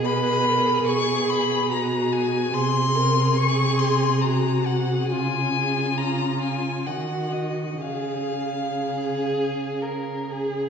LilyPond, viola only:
\new Staff \with { instrumentName = "Viola" } { \time 3/4 \key gis \dorian \tempo 4 = 69 b'8 ais'8 gis'4 fis'4 | gis'8 ais'8 gis'4 fis'4 | eis'8 gis'8 eis'4 fis'4 | gis'2~ gis'8 gis'8 | }